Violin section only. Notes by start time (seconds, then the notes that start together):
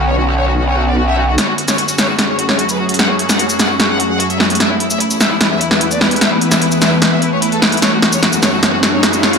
0.07 C#5
0.17 F#4
0.27 F#4
0.37 C#5
0.47 F#4
0.57 F#4
0.67 C#5
0.78 F#4
0.88 D5
0.98 F#4
1.08 E5
1.18 F#4
1.28 F#4
1.38 C#5
1.48 F#4
1.58 F#4
1.68 C#5
1.78 F#4
1.88 F#4
1.98 C#5
2.08 F#4
2.18 F#4
2.29 C#5
2.39 F#4
2.49 C#5
2.59 F#4
2.69 B4
2.79 F#4
2.89 F#4
2.99 F#5
3.09 F#4
3.19 F#4
3.29 F#5
3.39 F#4
3.49 F#4
3.59 F#5
3.69 F#4
3.79 F#4
3.89 F#5
4.00 F#4
4.10 F#5
4.20 F#4
4.30 E5
4.40 F#4
4.50 F#4
4.60 E5
4.70 E4
4.80 E4
4.90 E5
5.00 E4
5.11 E4
5.21 E5
5.31 E4
5.41 E4
5.51 E5
5.61 E4
5.71 E5
5.81 E4
5.91 D5
6.01 E4
6.11 E4
6.21 E5
6.31 E4
6.41 E4
6.51 E5
6.61 E4
6.71 E4
6.81 E5
6.92 E4
7.02 E4
7.12 E5
7.22 E4
7.32 C#5
7.42 E4
7.52 A4
7.62 E4
7.72 E4
7.82 C#5
7.92 F#4
8.02 F#4
8.12 C#5
8.22 F#4
8.32 F#4
8.42 C#5
8.53 F#4
8.63 C#5
8.73 F#4
8.83 F#4
8.93 C#5
9.03 F#4
9.13 F#4
9.23 C#5
9.33 F#4